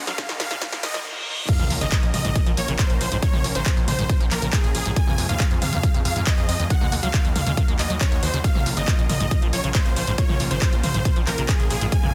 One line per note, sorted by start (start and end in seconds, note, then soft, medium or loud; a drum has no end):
0.00 0.12 D#3 loud
0.00 0.12 A#3 medium
0.00 0.12 F#4 medium
0.00 0.12 A#4 medium
0.00 riser medium
0.07 0.16 C#2 medium
0.07 0.13 F#3 medium
0.07 0.30 F5 medium
0.07 snare medium
0.07 closed hi-hat soft
0.18 0.24 C#3 loud
0.18 0.33 D#3 medium
0.18 0.33 A#3 medium
0.18 0.33 F#4 medium
0.18 0.33 A#4 medium
0.18 kick loud
0.18 snare medium
0.18 closed hi-hat medium
0.29 0.37 D#2 medium
0.29 0.32 D#3 medium
0.29 snare medium
0.29 closed hi-hat soft
0.40 0.48 D#2 loud
0.40 0.46 D#3 medium
0.40 0.70 F5 medium
0.40 snare loud
0.40 open hi-hat loud
0.40 mid tom medium
0.51 0.59 D#2 loud
0.51 0.56 C#3 loud
0.51 snare medium
0.51 closed hi-hat medium
0.51 mid tom medium
0.62 0.77 D#3 medium
0.62 0.67 D#3 medium
0.62 0.77 A#3 medium
0.62 0.77 F#4 medium
0.62 0.77 A#4 medium
0.62 kick loud
0.62 snare loud
0.62 closed hi-hat medium
0.62 reverse cymbal medium
0.72 0.81 D#2 medium
0.72 0.78 A#3 loud
0.72 snare loud
0.72 closed hi-hat soft
0.83 0.92 D#2 loud
0.83 0.98 D#3 medium
0.83 0.99 A#3 medium
0.83 0.87 A#3 loud
0.83 0.99 F#4 medium
0.83 0.99 A#4 medium
0.83 0.99 D#5 medium
0.83 snare loud
0.83 open hi-hat loud
0.94 1.03 D#2 medium
0.94 1.00 F#3 medium
0.94 snare medium
0.94 closed hi-hat soft
1.48 1.54 A#2 medium
1.48 1.64 F3 medium
1.48 1.64 A#3 medium
1.48 1.64 C#4 medium
1.48 1.64 A#4 medium
1.48 1.72 F5 loud
1.48 kick loud
1.48 closed hi-hat medium
1.48 crash loud
1.48 sub drop medium
1.59 1.68 A#1 medium
1.59 1.65 F3 loud
1.59 mid tom medium
1.70 1.79 A#1 medium
1.70 1.85 F3 medium
1.70 1.74 F3 loud
1.70 1.85 A#3 medium
1.70 1.86 C#4 medium
1.70 1.85 A#4 medium
1.70 open hi-hat loud
1.81 1.90 G#1 loud
1.81 1.87 C#3 medium
1.81 2.04 D#5 loud
1.81 closed hi-hat medium
1.92 1.98 G#2 loud
1.92 2.07 F3 medium
1.92 2.07 A#3 medium
1.92 2.07 C#4 medium
1.92 2.07 A#4 medium
1.92 kick loud
1.92 clap loud
1.92 closed hi-hat medium
2.03 2.11 A#1 medium
2.03 2.06 A#2 medium
2.03 closed hi-hat soft
2.14 2.22 A#1 loud
2.14 2.19 A#2 medium
2.14 2.44 D#5 medium
2.14 open hi-hat medium
2.14 mid tom medium
2.25 2.33 A#1 medium
2.25 2.30 G#2 loud
2.25 closed hi-hat medium
2.25 mid tom medium
2.36 2.41 A#2 medium
2.36 2.51 F3 medium
2.36 2.51 A#3 medium
2.36 2.51 C#4 medium
2.36 2.51 A#4 medium
2.36 kick loud
2.36 closed hi-hat medium
2.46 2.55 A#1 medium
2.46 2.52 F3 loud
2.46 closed hi-hat soft
2.57 2.66 A#1 loud
2.57 2.61 F3 loud
2.57 2.73 F3 medium
2.57 2.73 A#3 medium
2.57 2.73 C#4 medium
2.57 2.73 A#4 medium
2.57 2.73 C#5 medium
2.57 open hi-hat loud
2.68 2.76 A#1 medium
2.68 2.74 C#3 medium
2.68 closed hi-hat medium
2.79 2.84 G#2 loud
2.79 2.94 F3 medium
2.79 2.94 A#3 medium
2.79 2.94 C#4 medium
2.79 2.94 A#4 medium
2.79 2.94 C5 medium
2.79 kick loud
2.79 clap loud
2.79 closed hi-hat medium
2.90 2.98 A#1 medium
2.90 2.93 A#2 medium
2.90 closed hi-hat soft
3.01 3.09 A#1 loud
3.01 3.06 A#2 medium
3.01 3.16 C5 medium
3.01 open hi-hat medium
3.12 3.20 A#1 medium
3.12 3.17 G#2 loud
3.12 3.19 F3 medium
3.12 3.19 A#3 medium
3.12 3.19 C#4 medium
3.12 3.19 A#4 medium
3.12 closed hi-hat medium
3.22 3.28 A#2 medium
3.22 3.38 F3 medium
3.22 3.38 A#3 medium
3.22 3.38 C#4 medium
3.22 3.38 A#4 medium
3.22 3.45 C#5 loud
3.22 kick loud
3.22 closed hi-hat medium
3.33 3.42 A#1 medium
3.33 3.39 F3 loud
3.33 mid tom medium
3.44 3.53 A#1 loud
3.44 3.48 F3 loud
3.44 3.60 F3 loud
3.44 3.60 A#3 loud
3.44 3.60 C#4 loud
3.44 3.60 A#4 loud
3.44 open hi-hat loud
3.55 3.64 G#1 loud
3.55 3.61 C#3 medium
3.55 3.78 C5 loud
3.55 closed hi-hat medium
3.66 3.71 G#2 loud
3.66 3.81 F3 medium
3.66 3.81 A#3 medium
3.66 3.81 C#4 medium
3.66 3.81 A#4 medium
3.66 kick loud
3.66 clap loud
3.66 closed hi-hat medium
3.77 3.85 A#1 medium
3.77 3.80 A#2 medium
3.77 closed hi-hat soft
3.88 3.96 A#1 loud
3.88 3.93 A#2 medium
3.88 4.18 C5 medium
3.88 open hi-hat loud
3.88 mid tom medium
3.99 4.07 A#1 medium
3.99 4.04 G#2 loud
3.99 closed hi-hat medium
3.99 mid tom medium
4.09 4.15 A#2 medium
4.09 4.25 F3 medium
4.09 4.25 A#3 medium
4.09 4.25 C#4 medium
4.09 4.25 A#4 medium
4.09 kick loud
4.09 closed hi-hat medium
4.20 4.29 A#1 medium
4.20 4.26 F3 loud
4.20 closed hi-hat soft
4.31 4.40 A#1 loud
4.31 4.35 F3 loud
4.31 4.47 F3 medium
4.31 4.47 A#3 medium
4.31 4.47 C#4 medium
4.31 4.47 A#4 medium
4.31 clap medium
4.31 open hi-hat loud
4.42 4.50 A#1 medium
4.42 4.48 C#3 medium
4.42 closed hi-hat soft
4.53 4.58 G#2 loud
4.53 4.68 F3 medium
4.53 4.68 A#3 medium
4.53 4.68 C#4 medium
4.53 4.68 G#4 medium
4.53 4.68 A#4 medium
4.53 kick loud
4.53 clap loud
4.53 closed hi-hat medium
4.64 4.72 A#1 medium
4.64 4.67 A#2 medium
4.64 closed hi-hat soft
4.75 4.83 A#1 loud
4.75 4.80 A#2 medium
4.75 4.90 G#4 medium
4.75 open hi-hat loud
4.86 4.94 A#1 medium
4.86 4.91 G#2 medium
4.86 4.93 F3 medium
4.86 4.93 A#3 medium
4.86 4.93 C#4 medium
4.86 4.93 A#4 medium
4.86 closed hi-hat medium
4.96 5.02 F2 medium
4.96 5.12 F3 medium
4.96 5.12 G#3 medium
4.96 5.12 C4 medium
4.96 5.12 G#4 medium
4.96 5.19 G#5 loud
4.96 kick loud
4.96 closed hi-hat medium
5.07 5.16 F2 medium
5.07 5.13 C3 loud
5.07 mid tom medium
5.18 5.26 F2 loud
5.18 5.22 C3 loud
5.18 5.34 F3 medium
5.18 5.34 G#3 loud
5.18 5.34 C4 medium
5.18 5.34 G#4 loud
5.18 open hi-hat loud
5.29 5.37 D#2 medium
5.29 5.35 G#2 medium
5.29 5.52 F5 medium
5.29 closed hi-hat medium
5.40 5.46 D#2 loud
5.40 5.55 F3 medium
5.40 5.55 G#3 medium
5.40 5.55 C4 medium
5.40 5.55 G#4 medium
5.40 kick loud
5.40 clap loud
5.40 closed hi-hat medium
5.51 5.54 F2 medium
5.51 5.59 F2 medium
5.51 closed hi-hat soft
5.62 5.70 F2 loud
5.62 5.67 F2 medium
5.62 5.92 F5 medium
5.62 open hi-hat medium
5.62 mid tom medium
5.73 5.78 D#2 loud
5.73 5.81 F2 loud
5.73 closed hi-hat soft
5.73 mid tom medium
5.83 5.89 F2 medium
5.83 5.99 F3 medium
5.83 5.99 G#3 medium
5.83 5.99 C4 medium
5.83 5.99 G#4 medium
5.83 kick loud
5.83 closed hi-hat medium
5.94 6.03 F2 medium
5.94 6.00 C3 loud
5.94 closed hi-hat soft
6.05 6.13 F2 loud
6.05 6.08 C3 loud
6.05 6.21 F3 medium
6.05 6.21 G#3 medium
6.05 6.21 C4 medium
6.05 6.21 G#4 medium
6.05 6.20 F5 loud
6.05 open hi-hat loud
6.16 6.24 F2 medium
6.16 6.21 G#2 medium
6.16 closed hi-hat soft
6.27 6.32 D#2 loud
6.27 6.42 F3 medium
6.27 6.42 G#3 medium
6.27 6.42 C4 medium
6.27 6.42 G#4 medium
6.27 6.42 D#5 medium
6.27 kick loud
6.27 clap loud
6.27 closed hi-hat medium
6.38 6.46 F2 medium
6.38 6.41 F2 medium
6.38 closed hi-hat soft
6.49 6.57 F2 loud
6.49 6.54 F2 medium
6.49 6.64 D#5 medium
6.49 open hi-hat loud
6.59 6.65 D#2 loud
6.59 6.68 F2 medium
6.59 6.67 F3 medium
6.59 6.67 G#3 medium
6.59 6.67 C4 medium
6.59 6.67 G#4 medium
6.59 closed hi-hat medium
6.70 6.76 D#3 medium
6.70 6.86 D#3 medium
6.70 6.86 F#3 medium
6.70 6.86 A#3 medium
6.70 6.86 F#4 medium
6.70 6.93 F#5 loud
6.70 kick loud
6.70 closed hi-hat medium
6.81 6.90 D#2 medium
6.81 6.87 A#3 loud
6.81 mid tom medium
6.92 7.00 D#2 loud
6.92 7.08 D#3 loud
6.92 7.08 F#3 medium
6.92 6.95 A#3 loud
6.92 7.08 A#3 medium
6.92 7.08 F#4 loud
6.92 open hi-hat loud
7.03 7.11 C#2 loud
7.03 7.08 F#3 medium
7.03 7.26 F5 medium
7.03 closed hi-hat medium
7.14 7.19 C#3 loud
7.14 7.29 D#3 medium
7.14 7.29 F#3 medium
7.14 7.29 A#3 medium
7.14 7.29 F#4 medium
7.14 kick loud
7.14 clap loud
7.14 closed hi-hat medium
7.25 7.33 D#2 medium
7.25 7.28 D#3 medium
7.25 closed hi-hat soft
7.36 7.44 D#2 loud
7.36 7.41 D#3 medium
7.36 7.66 F5 medium
7.36 open hi-hat loud
7.36 mid tom medium
7.47 7.55 D#2 medium
7.47 7.52 C#3 loud
7.47 closed hi-hat soft
7.47 mid tom medium
7.57 7.63 D#3 medium
7.57 7.73 D#3 medium
7.57 7.73 F#3 medium
7.57 7.73 A#3 medium
7.57 7.73 F#4 medium
7.57 kick loud
7.57 closed hi-hat medium
7.68 7.76 D#2 medium
7.68 7.74 A#3 loud
7.68 closed hi-hat soft
7.79 7.87 D#2 loud
7.79 7.95 D#3 medium
7.79 7.94 F#3 medium
7.79 7.82 A#3 loud
7.79 7.95 A#3 medium
7.79 7.95 F#4 medium
7.79 7.94 D#5 loud
7.79 clap medium
7.79 open hi-hat loud
7.90 7.98 D#2 medium
7.90 7.95 F#3 medium
7.90 closed hi-hat soft
8.01 8.06 C#3 loud
8.01 8.16 D#3 medium
8.01 8.16 F#3 medium
8.01 8.16 A#3 medium
8.01 8.16 F#4 medium
8.01 8.16 C#5 medium
8.01 kick loud
8.01 clap loud
8.01 closed hi-hat medium
8.12 8.20 D#2 medium
8.12 8.15 D#3 medium
8.12 closed hi-hat soft
8.23 8.31 D#2 loud
8.23 8.28 D#3 medium
8.23 8.38 C5 medium
8.23 open hi-hat loud
8.33 8.42 D#2 medium
8.33 8.39 C#3 loud
8.33 8.41 D#3 medium
8.33 8.41 F#3 medium
8.33 8.41 A#3 medium
8.33 8.41 F#4 medium
8.33 closed hi-hat soft
8.44 8.50 A#2 medium
8.44 8.60 C#3 medium
8.44 8.60 F3 medium
8.44 8.60 A#3 medium
8.44 8.60 F4 medium
8.44 8.67 F5 loud
8.44 kick loud
8.44 closed hi-hat medium
8.55 8.63 A#1 medium
8.55 8.61 F3 loud
8.55 mid tom medium
8.66 8.74 A#1 loud
8.66 8.81 C#3 loud
8.66 8.81 F3 medium
8.66 8.69 F3 loud
8.66 8.81 A#3 medium
8.66 8.81 F4 loud
8.66 open hi-hat loud
8.77 8.85 G#1 medium
8.77 8.82 C#3 medium
8.77 9.00 D#5 loud
8.77 closed hi-hat medium
8.88 8.93 G#2 loud
8.88 9.03 C#3 medium
8.88 9.03 F3 medium
8.88 9.03 A#3 medium
8.88 9.03 F4 medium
8.88 kick loud
8.88 clap loud
8.88 closed hi-hat medium
8.99 9.07 A#1 medium
8.99 9.02 A#2 medium
8.99 closed hi-hat soft
9.10 9.18 A#1 loud
9.10 9.15 A#2 medium
9.10 9.40 D#5 medium
9.10 open hi-hat loud
9.10 mid tom medium
9.20 9.29 A#1 loud
9.20 9.26 G#2 loud
9.20 closed hi-hat medium
9.20 mid tom medium
9.31 9.37 A#2 medium
9.31 9.47 C#3 medium
9.31 9.46 F3 medium
9.31 9.47 A#3 medium
9.31 9.47 F4 medium
9.31 kick loud
9.31 closed hi-hat medium
9.42 9.50 A#1 medium
9.42 9.48 F3 loud
9.42 closed hi-hat soft
9.53 9.61 A#1 loud
9.53 9.68 C#3 medium
9.53 9.68 F3 medium
9.53 9.56 F3 loud
9.53 9.68 A#3 medium
9.53 9.68 F4 medium
9.53 9.68 C#5 medium
9.53 open hi-hat loud
9.64 9.72 A#1 medium
9.64 9.69 C#3 medium
9.64 closed hi-hat soft
9.75 9.80 G#2 loud
9.75 9.90 C#3 medium
9.75 9.90 F3 medium
9.75 9.90 A#3 medium
9.75 9.90 F4 medium
9.75 9.90 C5 medium
9.75 kick loud
9.75 clap loud
9.75 closed hi-hat medium
9.86 9.94 A#1 medium
9.86 9.89 A#2 medium
9.86 closed hi-hat soft
9.96 10.05 A#1 loud
9.96 10.02 A#2 medium
9.96 10.12 C5 medium
9.96 open hi-hat medium
10.07 10.16 A#1 medium
10.07 10.13 G#2 loud
10.07 10.15 C#3 medium
10.07 10.15 F3 medium
10.07 10.15 A#3 medium
10.07 10.15 F4 medium
10.07 closed hi-hat soft
10.18 10.24 A#2 medium
10.18 10.33 C#3 medium
10.18 10.33 F3 medium
10.18 10.33 A#3 medium
10.18 10.33 F4 medium
10.18 10.41 C#5 loud
10.18 kick loud
10.18 closed hi-hat medium
10.29 10.37 A#1 medium
10.29 10.35 F3 loud
10.29 mid tom medium
10.40 10.48 A#1 medium
10.40 10.55 C#3 medium
10.40 10.55 F3 loud
10.40 10.43 F3 loud
10.40 10.55 A#3 medium
10.40 10.55 F4 medium
10.40 open hi-hat loud
10.51 10.59 G#1 medium
10.51 10.56 C#3 medium
10.51 10.74 C5 medium
10.51 closed hi-hat medium
10.62 10.67 G#2 loud
10.62 10.77 C#3 medium
10.62 10.77 F3 medium
10.62 10.77 A#3 medium
10.62 10.77 F4 medium
10.62 kick loud
10.62 clap loud
10.62 closed hi-hat medium
10.73 10.81 A#1 medium
10.73 10.76 A#2 medium
10.73 closed hi-hat soft
10.83 10.92 A#1 loud
10.83 10.89 A#2 medium
10.83 11.14 C5 medium
10.83 open hi-hat medium
10.83 mid tom medium
10.94 11.03 A#1 loud
10.94 11.00 G#2 loud
10.94 closed hi-hat medium
10.94 mid tom medium
11.05 11.11 A#2 medium
11.05 11.21 C#3 medium
11.05 11.20 F3 medium
11.05 11.20 A#3 medium
11.05 11.20 F4 medium
11.05 kick loud
11.05 closed hi-hat medium
11.16 11.24 A#1 medium
11.16 11.22 F3 loud
11.16 closed hi-hat soft
11.27 11.35 A#1 loud
11.27 11.42 C#3 medium
11.27 11.30 F3 loud
11.27 11.42 F3 medium
11.27 11.42 A#3 medium
11.27 11.42 F4 medium
11.27 11.42 A#4 medium
11.27 clap medium
11.27 open hi-hat loud
11.38 11.46 A#1 medium
11.38 11.43 C#3 medium
11.38 closed hi-hat soft
11.49 11.54 G#2 loud
11.49 11.64 C#3 medium
11.49 11.64 F3 medium
11.49 11.64 A#3 medium
11.49 11.64 F4 medium
11.49 11.64 G#4 medium
11.49 kick loud
11.49 clap loud
11.49 closed hi-hat medium
11.60 11.68 A#1 medium
11.60 11.63 A#2 medium
11.60 closed hi-hat soft
11.70 11.79 A#1 loud
11.70 11.76 A#2 medium
11.70 11.86 G#4 medium
11.70 open hi-hat medium
11.81 11.90 A#1 medium
11.81 11.87 G#2 medium
11.81 11.89 C#3 medium
11.81 11.89 F3 medium
11.81 11.89 A#3 medium
11.81 11.89 F4 medium
11.81 closed hi-hat medium
11.92 11.98 F2 medium
11.92 12.08 C3 medium
11.92 12.08 F3 medium
11.92 12.08 G#3 medium
11.92 12.08 F4 medium
11.92 12.14 G#5 loud
11.92 kick loud
11.92 closed hi-hat medium
12.03 12.11 F2 medium
12.03 12.08 C3 loud
12.03 mid tom medium